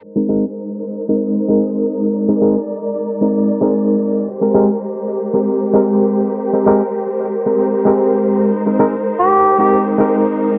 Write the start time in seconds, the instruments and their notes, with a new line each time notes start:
0.03 string section G#3 D#4 A#4 C5
0.16 reed electric piano G#3 C4 D#4 A#4
0.29 reed electric piano G#3 C4 D#4 A#4
1.08 reed electric piano G#3 C4 D#4 A#4
1.48 reed electric piano G#3 C4 D#4 A#4
2.15 string section D5
2.28 reed electric piano G#3 C4 D#4 A#4
2.41 reed electric piano G#3 C4 D#4 A#4
3.21 reed electric piano G#3 C4 D#4 A#4
3.61 reed electric piano G#3 C4 D#4 A#4
4.28 string section G4 A#4 C5
4.41 reed electric piano G#3 C4 G4 A#4
4.54 reed electric piano G#3 C4 G4 A#4
5.34 reed electric piano G#3 C4 G4 A#4
5.73 reed electric piano G#3 C4 G4 A#4
6.54 reed electric piano G#3 C4 G4 A#4
6.67 reed electric piano G#3 C4 G4 A#4
7.46 reed electric piano G#3 C4 G4 A#4
7.85 reed electric piano G#3 C4 G4 A#4
8.53 string section D#4
8.66 reed electric piano G#3 C4 D#4 A#4
8.79 reed electric piano G#3 C4 D#4 A#4
9.19 tenor saxophone G4
9.58 reed electric piano G#3 C4 D#4 A#4, tenor saxophone G4
9.98 reed electric piano G#3 C4 D#4 A#4